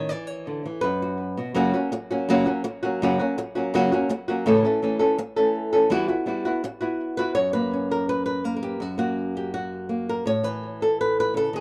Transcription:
Already playing: nylon-string guitar D#3
0.09 nylon-string guitar E3 D5
0.27 nylon-string guitar C#5
0.47 nylon-string guitar D3
0.65 nylon-string guitar E3
0.81 nylon-string guitar F#2 B4
1.02 nylon-string guitar F#4
1.37 nylon-string guitar B2 F#4
1.54 nylon-string guitar F#2 C#3 F#3 A#3 C#4 F#4
1.74 nylon-string guitar F#3 A#3 C#4 F#4
1.92 muted nylon-string guitar stroke
2.11 nylon-string guitar F#3 A#3 C#4 F#4
2.29 nylon-string guitar F#2 C#3 F#3 A#3 C#4 F#4
2.46 nylon-string guitar F#3 A#3 C#4 F#4
2.64 muted nylon-string guitar stroke
2.83 nylon-string guitar F#3 A#3 C#4 F#4
3.02 nylon-string guitar F#2 C#3 F#3 A#3 C#4 F#4
3.19 nylon-string guitar F#3 A#3 C#4 F#4
3.38 muted nylon-string guitar stroke
3.55 nylon-string guitar F#3 A#3 C#4 F#4
3.74 nylon-string guitar F#2 C#3 F#3 A#3 C#4 F#4
3.92 nylon-string guitar F#3 A#3 C#4 F#4
4.09 muted nylon-string guitar stroke
4.28 nylon-string guitar F#3 A#3 C#4 F#4
4.46 nylon-string guitar A2 C#3 E3 A3 C#4 A4
4.65 nylon-string guitar E3 A3 C#4 A4
4.82 nylon-string guitar E3 A3 C#4 A4
4.99 nylon-string guitar E3 A3 C#4 A4
5.18 muted nylon-string guitar stroke
5.36 nylon-string guitar E3 A3 C#4 A4
5.73 nylon-string guitar E3 A3 C#4 A4
5.90 nylon-string guitar E3 G3 B3 E4 F#4
6.08 nylon-string guitar B3 E4 F#4
6.26 nylon-string guitar G3 B3 E4 F#4
6.45 nylon-string guitar B3 E4 F#4
6.64 muted nylon-string guitar stroke
6.81 nylon-string guitar B3 E4 F#4
7.17 nylon-string guitar B3 E4 F#4 B4
7.35 nylon-string guitar F#2 C#5
7.53 nylon-string guitar A#3 B4
7.74 nylon-string guitar C#4
7.91 nylon-string guitar A#4
8.09 nylon-string guitar B4
8.26 nylon-string guitar B4
8.44 nylon-string guitar A#3 A#4
8.56 nylon-string guitar A#4
8.63 nylon-string guitar G4
8.80 nylon-string guitar F#2 F#4
8.98 nylon-string guitar A#3 F#4
9.37 nylon-string guitar G4
9.54 nylon-string guitar F#4
9.89 nylon-string guitar A#3
10.09 nylon-string guitar A#4
10.26 nylon-string guitar A2 C#5
10.43 nylon-string guitar E3 B4
10.82 nylon-string guitar A4
11.01 nylon-string guitar B4
11.20 nylon-string guitar B4
11.34 nylon-string guitar C#3 A4
11.53 nylon-string guitar D#3 G#4

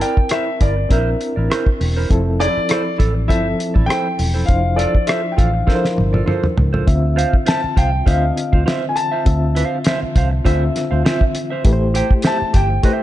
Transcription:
Already playing: reed electric piano C4 E4 A#4
0.00 clean electric guitar E4 A#4 D5, grand piano G5, closed hi-hat
0.17 muted fingered electric bass stroke, kick
0.29 clean electric guitar E4 A#4 C5, grand piano E5, cross-stick, closed hi-hat
0.47 muted clean electric guitar stroke
0.60 fingered electric bass G1, clean electric guitar E4 A#4 D5, grand piano D5, kick, closed hi-hat
0.77 muted clean electric guitar stroke
0.89 fingered electric bass A#1, reed electric piano C4 D4 A#4, clean electric guitar E4 A#4 C5, grand piano E5, kick, closed hi-hat
0.97 reed electric piano E4
1.20 muted clean electric guitar stroke, closed hi-hat
1.36 fingered electric bass A1, clean electric guitar E4 A#4 D5
1.50 clean electric guitar E4 A#4 C5, cross-stick, closed hi-hat
1.66 kick
1.80 fingered electric bass E1, muted clean electric guitar stroke, open hi-hat
1.96 clean electric guitar E4 A#4 C5
2.09 fingered electric bass F1, reed electric piano F3 C4 E4 A4, kick, closed hi-hat
2.40 clean electric guitar E4 A4 D5, grand piano D5, closed hi-hat
2.57 muted fingered electric bass stroke
2.69 clean electric guitar E4 A4 C5, cross-stick, closed hi-hat
2.85 muted clean electric guitar stroke
2.98 fingered electric bass A1, clean electric guitar E4 A4 D5, kick, closed hi-hat
3.15 muted clean electric guitar stroke
3.28 fingered electric bass G1, reed electric piano F3 C4 E4 A4, clean electric guitar E4 A4 C5, grand piano E5, kick, closed hi-hat
3.58 muted clean electric guitar stroke, closed hi-hat
3.74 fingered electric bass A1, clean electric guitar E4 A4 D5, kick
3.86 clean electric guitar E4 A4 C5, grand piano G5
3.90 cross-stick, closed hi-hat
4.19 fingered electric bass E1, muted clean electric guitar stroke, open hi-hat
4.34 clean electric guitar E4 A4 C5
4.46 fingered electric bass F1, reed electric piano F3 D4 E4 C5, grand piano F5, kick, closed hi-hat
4.76 clean electric guitar F4 A4 D5, grand piano D5, closed hi-hat
4.95 muted fingered electric bass stroke, kick
5.07 clean electric guitar F4 A4 C5, grand piano E5, cross-stick, closed hi-hat
5.24 muted clean electric guitar stroke
5.32 grand piano G5
5.37 fingered electric bass A1, clean electric guitar F4 A4 D5, grand piano F5, kick, closed hi-hat
5.53 muted clean electric guitar stroke
5.67 reed electric piano F3 D4 E4 A#4, clean electric guitar F4 A4 C5, kick, snare
5.75 reed electric piano C5
5.85 snare
5.97 fingered electric bass G1, muted clean electric guitar stroke, high tom
6.13 clean electric guitar F4 A4 D5, high tom
6.26 clean electric guitar F4 A4 C5, mid tom
6.44 mid tom
6.57 fingered electric bass C#2, muted clean electric guitar stroke, floor tom
6.73 clean electric guitar F4 A4 C5, floor tom
6.86 fingered electric bass D2, reed electric piano D3 C4 F4 E5, kick, closed hi-hat
7.16 clean electric guitar F4 C5 F5, closed hi-hat
7.33 kick
7.46 clean electric guitar F4 C5 E5, grand piano A5, snare, closed hi-hat
7.63 muted clean electric guitar stroke, muted fingered electric bass stroke
7.76 fingered electric bass C2, clean electric guitar F4 C5 F5, grand piano G5, kick, closed hi-hat
7.92 muted clean electric guitar stroke
8.06 fingered electric bass D2, reed electric piano D3 C4 F4 D#5, clean electric guitar F4 C5 E5, grand piano F5, kick, closed hi-hat
8.14 reed electric piano F5
8.37 muted clean electric guitar stroke, closed hi-hat
8.53 fingered electric bass D2, clean electric guitar F4 C5 F5, kick
8.66 clean electric guitar F4 C5 E5, snare, closed hi-hat
8.89 grand piano G#5
8.96 grand piano A5, muted clean electric guitar stroke, closed hi-hat
9.12 clean electric guitar F4 C5 E5
9.25 fingered electric bass D2, reed electric piano D3 C4 F4 E5, kick, closed hi-hat
9.55 clean electric guitar F4 C5 F5, closed hi-hat
9.84 clean electric guitar F4 C5 E5, snare, closed hi-hat
10.03 muted fingered electric bass stroke, muted clean electric guitar stroke
10.15 fingered electric bass C2, clean electric guitar F4 C5 F5, kick, closed hi-hat
10.31 muted clean electric guitar stroke
10.45 fingered electric bass D2, reed electric piano D3 C4 F4 E5, clean electric guitar F4 C5 E5, kick, closed hi-hat
10.75 muted clean electric guitar stroke, snare, closed hi-hat
10.91 fingered electric bass D2, clean electric guitar F4 C5 F5
11.05 clean electric guitar F4 C5 E5, snare, closed hi-hat
11.21 kick
11.35 muted clean electric guitar stroke, closed hi-hat
11.50 clean electric guitar F4 C5 E5
11.64 fingered electric bass A1, reed electric piano A3 E4 G4 B4, kick, closed hi-hat
11.73 reed electric piano C5
11.94 clean electric guitar G4 C5 G5, closed hi-hat
12.11 kick
12.22 clean electric guitar G4 C5 E5, snare, closed hi-hat
12.27 grand piano A5
12.40 muted clean electric guitar stroke, muted fingered electric bass stroke
12.53 fingered electric bass G1, clean electric guitar G4 C5 G5, grand piano G5, kick, closed hi-hat
12.70 muted clean electric guitar stroke
12.83 reed electric piano A3 E4 G4 C5, clean electric guitar G4 C5 E5, kick, closed hi-hat

